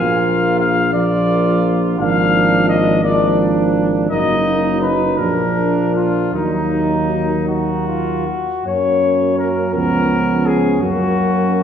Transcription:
0.00 2.00 A#1 medium
0.00 0.90 F3 soft
0.00 0.90 A#3 soft
0.00 0.90 F4 medium
0.00 0.59 F5 medium
0.60 0.93 F5 medium
0.93 1.96 F3 medium
0.93 1.97 A#3 medium
0.93 2.01 F4 medium
0.93 1.69 D5 medium
1.99 4.10 G#1 medium
1.99 3.02 F3 soft
1.99 3.02 A#3 soft
1.99 3.04 D4 medium
1.99 2.65 F5 medium
2.69 3.03 D#5 medium
3.03 4.07 F3 soft
3.03 4.07 A#3 medium
3.03 4.08 D4 medium
3.03 3.38 D5 medium
4.10 5.21 F#1 medium
4.10 5.15 F#3 soft
4.10 5.02 A#3 soft
4.10 5.15 D#4 medium
4.10 4.78 D#5 medium
4.81 5.20 B4 medium
5.19 6.16 A#1 soft
5.19 6.35 F3 soft
5.19 6.31 A#3 soft
5.19 6.31 D4 soft
5.19 5.94 A#4 soft
5.95 6.32 F4 soft
6.33 8.27 D#2 soft
6.33 8.31 F#3 soft
6.33 8.27 A#3 soft
6.33 7.31 D#4 soft
6.33 7.46 D#4 soft
7.48 7.84 D#4 soft
7.48 8.62 F#4 soft
7.87 8.28 F4 soft
8.27 8.66 F#4 soft
8.66 9.76 F#2 soft
8.66 9.76 F#3 soft
8.66 9.76 A#3 soft
8.66 11.63 C#4 soft
8.66 9.37 C#5 medium
9.38 9.73 A#4 medium
9.74 10.83 C#2 soft
9.74 10.80 F3 soft
9.74 10.81 B3 soft
9.74 10.47 A#4 medium
10.46 10.81 G#4 medium
10.81 11.63 F#2 medium
10.81 11.63 F#3 soft
10.81 11.63 A#3 soft
10.81 11.63 F#4 medium

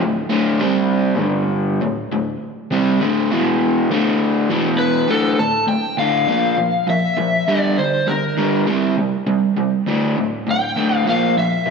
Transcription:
0.02 0.26 D2 medium
0.02 0.26 A2 medium
0.30 0.60 D2 medium
0.30 0.60 A2 loud
0.30 0.60 D3 medium
0.61 1.20 C3 medium
0.61 1.20 G3 medium
0.61 1.20 C4 medium
1.20 1.79 G2 medium
1.20 1.79 D3 medium
1.20 1.79 G3 loud
1.81 2.05 D2 medium
1.81 2.05 A2 medium
2.12 2.35 D2 medium
2.12 2.35 A2 medium
2.71 2.99 C3 medium
2.71 3.00 G3 medium
2.71 3.00 C4 loud
3.00 3.29 D2 medium
3.00 3.29 A2 loud
3.00 3.30 D3 medium
3.31 3.89 E2 medium
3.31 3.89 B2 medium
3.31 3.89 E3 medium
3.90 4.48 D2 medium
3.90 4.49 A2 loud
3.90 4.49 D3 loud
4.50 5.07 E2 medium
4.50 5.08 B2 medium
4.50 5.08 E3 loud
4.79 5.09 B4 medium
5.08 5.36 D2 medium
5.08 5.36 A2 medium
5.08 5.36 D3 medium
5.08 5.40 A4 medium
5.39 5.66 D2 medium
5.39 5.66 A2 medium
5.39 5.68 A5 medium
5.67 5.95 D2 medium
5.67 5.95 A2 medium
5.67 5.96 G5 medium
5.98 6.26 D2 medium
5.98 6.27 A2 medium
5.98 6.27 D3 medium
5.98 6.89 F5 medium
6.28 6.56 A#2 medium
6.28 6.56 F3 medium
6.28 6.56 A#3 medium
6.58 6.85 A#2 medium
6.58 6.85 F3 medium
6.87 7.14 A#2 medium
6.87 7.15 F3 medium
6.87 7.50 E5 medium
7.17 7.44 A#2 medium
7.17 7.45 F3 medium
7.48 7.76 G2 medium
7.48 7.76 D3 medium
7.48 7.76 G3 medium
7.48 7.79 D5 medium
7.78 8.05 G2 medium
7.78 8.05 D3 medium
7.78 8.08 C5 medium
8.07 8.34 G2 medium
8.07 8.35 D3 medium
8.07 8.63 A#4 medium
8.37 8.65 G2 medium
8.37 8.66 D3 medium
8.37 8.66 G3 medium
8.67 8.95 C3 medium
8.67 8.95 G3 medium
8.67 8.95 C4 medium
8.97 9.24 C3 medium
8.97 9.24 G3 medium
9.27 9.53 C3 medium
9.27 9.54 G3 medium
9.57 9.84 C3 medium
9.57 9.84 G3 medium
9.87 10.15 D2 medium
9.87 10.15 A2 medium
9.87 10.15 D3 medium
10.17 10.43 D2 medium
10.17 10.44 A2 medium
10.47 10.73 D2 medium
10.47 10.74 A2 medium
10.47 10.97 G5 medium
10.77 11.04 D2 medium
10.77 11.05 A2 medium
10.77 11.05 D3 medium
10.97 11.09 F5 medium
11.06 11.34 A#2 medium
11.06 11.35 F3 medium
11.06 11.35 A#3 medium
11.06 11.35 F5 medium
11.37 11.63 A#2 medium
11.37 11.63 F3 medium
11.37 11.70 E5 medium
11.66 11.70 A#2 medium
11.66 11.70 F3 medium

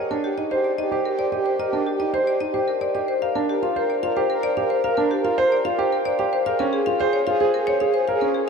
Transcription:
0.00 0.17 G4 soft
0.00 0.15 A#4 medium
0.00 0.15 D#5 medium
0.11 0.28 D4 medium
0.11 0.28 A#4 medium
0.24 0.42 G4 medium
0.24 0.45 G4 soft
0.38 0.55 D#4 medium
0.38 0.55 D#5 medium
0.51 0.73 G4 medium
0.51 0.69 C5 medium
0.64 0.82 D5 medium
0.78 0.96 D#4 medium
0.78 1.02 G4 medium
0.78 0.96 D#5 medium
0.92 1.09 G4 medium
0.92 1.10 C5 medium
1.05 1.23 A#4 medium
1.10 1.30 G4 medium
1.19 1.37 C5 medium
1.19 1.36 D5 medium
1.32 1.50 G4 medium
1.32 1.50 D#5 medium
1.38 1.58 G4 medium
1.46 1.64 C5 medium
1.59 1.77 A#4 medium
1.59 1.77 D#5 medium
1.67 1.87 G4 medium
1.73 1.91 D4 medium
1.73 1.91 A#4 medium
1.87 2.04 G4 medium
1.95 2.15 G4 medium
2.00 2.18 D#4 medium
2.00 2.18 D#5 medium
2.14 2.31 C5 medium
2.23 2.43 G4 medium
2.27 2.45 D5 medium
2.40 2.58 D#4 medium
2.40 2.58 D#5 medium
2.52 2.72 G4 medium
2.52 2.72 C5 medium
2.68 2.85 A#4 medium
2.81 3.00 G4 soft
2.81 2.99 C5 medium
2.81 2.99 D5 medium
2.95 3.12 G4 medium
2.95 3.12 D#5 medium
3.08 3.26 C5 medium
3.22 3.42 A#4 soft
3.22 3.39 A#4 medium
3.22 3.39 F5 medium
3.35 3.53 D4 medium
3.35 3.53 A#4 medium
3.49 3.67 G4 medium
3.49 3.70 A#4 medium
3.63 3.80 F4 medium
3.63 3.80 F5 medium
3.76 3.98 A#4 medium
3.76 3.93 C5 medium
3.76 3.94 C5 medium
3.90 4.07 D5 medium
4.03 4.21 F4 medium
4.03 4.26 A#4 medium
4.03 4.20 F5 medium
4.17 4.34 G4 medium
4.17 4.34 C5 medium
4.30 4.47 A#4 medium
4.34 4.54 A#4 medium
4.43 4.61 C5 medium
4.43 4.61 D5 medium
4.57 4.75 G4 medium
4.57 4.74 F5 medium
4.63 4.83 A#4 medium
4.70 4.88 C5 medium
4.84 5.02 A#4 medium
4.84 5.02 F5 medium
4.91 5.11 A#4 medium
4.97 5.15 D4 medium
4.97 5.15 A#4 medium
5.11 5.29 G4 medium
5.20 5.39 A#4 medium
5.25 5.42 F4 medium
5.25 5.42 F5 medium
5.38 5.56 C5 loud
5.38 5.56 C5 medium
5.48 5.68 A#4 medium
5.52 5.69 D5 medium
5.65 5.83 F4 medium
5.65 5.83 F5 medium
5.76 5.96 G4 loud
5.76 5.96 A#4 medium
5.76 5.96 C5 medium
5.92 6.10 A#4 medium
6.05 6.24 A#4 soft
6.05 6.23 C5 medium
6.05 6.23 D5 loud
6.19 6.37 G4 medium
6.19 6.37 F5 medium
6.33 6.50 C5 medium
6.46 6.66 G#4 soft
6.46 6.64 A#4 medium
6.46 6.64 F5 medium
6.59 6.77 C#4 medium
6.59 6.77 A#4 medium
6.73 6.91 G#4 medium
6.73 6.94 G#4 medium
6.86 7.04 F4 medium
6.86 7.04 F5 medium
7.00 7.22 G#4 medium
7.00 7.18 C5 medium
7.00 7.18 C5 loud
7.13 7.31 C#5 medium
7.27 7.45 F4 medium
7.27 7.50 G#4 medium
7.27 7.45 F5 loud
7.40 7.58 G#4 loud
7.40 7.58 C5 medium
7.54 7.72 A#4 medium
7.59 7.79 G#4 medium
7.67 7.85 C5 medium
7.67 7.85 C#5 loud
7.80 7.99 G#4 medium
7.80 7.98 F5 medium
7.86 8.07 G#4 medium
7.94 8.12 C5 medium
8.08 8.26 A#4 medium
8.08 8.26 F5 medium
8.15 8.35 G#4 medium
8.21 8.39 C#4 medium
8.21 8.39 A#4 medium
8.34 8.49 G#4 medium
8.44 8.49 G#4 medium

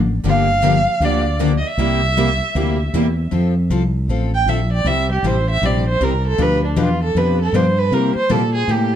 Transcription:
0.00 0.18 A1 medium
0.24 0.86 G1 medium
0.24 0.46 D3 medium
0.24 0.46 F3 medium
0.24 0.46 A#3 medium
0.24 0.46 D4 medium
0.24 0.46 G4 medium
0.28 1.06 F5 loud
0.63 0.74 D3 medium
0.63 0.74 F3 medium
0.63 0.74 A#3 loud
0.63 0.75 D4 loud
0.63 0.75 G4 loud
1.00 1.62 D2 medium
1.00 1.23 D3 medium
1.00 1.23 F3 medium
1.00 1.23 A#3 medium
1.00 1.23 D4 medium
1.00 1.23 G4 medium
1.04 1.41 D5 loud
1.40 1.51 D3 medium
1.40 1.51 F3 medium
1.40 1.51 A#3 medium
1.40 1.51 D4 medium
1.40 1.52 G4 medium
1.58 1.69 D#5 medium
1.67 2.95 E5 loud
1.77 2.39 C2 medium
1.77 2.00 C3 medium
1.77 2.00 G3 medium
1.77 2.00 A#3 medium
1.77 2.00 E4 medium
1.77 2.00 G4 medium
2.17 2.28 C3 medium
2.17 2.28 G3 loud
2.17 2.28 A#3 medium
2.17 2.29 E4 loud
2.17 2.28 G4 medium
2.55 2.88 D2 medium
2.55 2.76 C3 medium
2.55 2.77 G3 medium
2.55 2.77 A#3 medium
2.55 2.77 E4 medium
2.55 2.77 G4 medium
2.93 3.26 E2 medium
2.93 3.05 C3 medium
2.93 3.05 G3 loud
2.93 3.05 A#3 medium
2.93 3.05 E4 loud
2.93 3.06 G4 medium
3.31 3.69 F2 medium
3.31 3.53 F3 medium
3.31 3.53 C4 medium
3.31 3.53 F4 medium
3.31 3.53 A4 medium
3.70 4.07 C2 medium
3.70 3.82 F3 medium
3.70 3.82 C4 medium
3.70 3.82 F4 loud
3.70 3.82 A4 loud
4.08 4.45 A1 medium
4.08 4.30 F3 medium
4.08 4.31 C4 medium
4.08 4.31 F4 medium
4.08 4.31 A4 medium
4.35 4.50 G5 medium
4.46 4.84 A#1 medium
4.46 4.59 F3 medium
4.46 4.59 C4 medium
4.46 4.59 F4 medium
4.46 4.59 A4 medium
4.46 4.72 E5 medium
4.73 4.89 D5 medium
4.84 5.22 C2 medium
4.84 5.07 C3 medium
4.84 5.07 G3 medium
4.84 5.07 C4 medium
4.84 5.07 E4 medium
4.84 5.07 G4 medium
4.84 5.10 E5 loud
5.12 5.28 G4 medium
5.23 5.60 A1 medium
5.23 5.35 C3 medium
5.23 5.35 G3 loud
5.23 5.35 C4 medium
5.23 5.36 E4 loud
5.23 5.36 G4 loud
5.23 5.49 C5 medium
5.50 5.67 E5 loud
5.62 5.99 A#1 medium
5.62 5.84 C3 medium
5.62 5.84 G3 medium
5.62 5.84 C4 medium
5.62 5.84 E4 medium
5.62 5.84 G4 medium
5.62 5.88 D5 medium
5.88 6.04 C5 medium
6.00 6.38 C2 medium
6.00 6.12 C3 medium
6.00 6.12 G3 medium
6.00 6.12 C4 medium
6.00 6.12 E4 medium
6.00 6.12 G4 medium
6.00 6.25 A#4 medium
6.27 6.44 A4 medium
6.38 6.76 D2 medium
6.38 6.60 B2 medium
6.38 6.60 F3 medium
6.38 6.60 B3 medium
6.38 6.60 D4 medium
6.38 6.60 G4 medium
6.38 6.60 B4 medium
6.42 6.64 B4 medium
6.65 6.83 D4 soft
6.76 7.14 E2 medium
6.76 6.88 B2 loud
6.76 6.88 F3 medium
6.76 6.88 B3 medium
6.76 6.88 D4 loud
6.76 6.88 G4 loud
6.76 6.89 B4 loud
6.81 7.02 F4 medium
7.03 7.19 A4 medium
7.15 7.52 F2 medium
7.15 7.37 B2 medium
7.15 7.37 F3 medium
7.15 7.37 B3 medium
7.15 7.37 D4 medium
7.15 7.37 G4 medium
7.15 7.37 B4 medium
7.15 7.40 B4 medium
7.41 7.57 A4 medium
7.53 7.90 G2 medium
7.53 7.65 B2 medium
7.53 7.65 F3 medium
7.53 7.65 B3 medium
7.53 7.65 D4 medium
7.53 7.65 G4 medium
7.53 7.66 B4 medium
7.53 7.80 C5 medium
7.78 7.95 B4 medium
7.91 8.14 C3 medium
7.91 8.13 C3 medium
7.91 8.13 G3 medium
7.91 8.13 A#3 medium
7.91 8.13 E4 medium
7.91 8.14 G4 medium
7.91 8.15 A#4 medium
8.15 8.32 C5 loud
8.15 muted fretless electric bass stroke soft
8.29 8.67 A#2 medium
8.29 8.41 C3 medium
8.29 8.41 G3 medium
8.29 8.41 A#3 loud
8.29 8.41 E4 loud
8.29 8.41 G4 medium
8.29 8.54 A4 medium
8.54 8.72 G#4 medium
8.68 8.96 A2 medium
8.68 8.90 C3 medium
8.68 8.90 G3 medium
8.68 8.90 A#3 medium
8.68 8.90 E4 medium
8.68 8.90 G4 medium
8.68 8.95 G4 medium

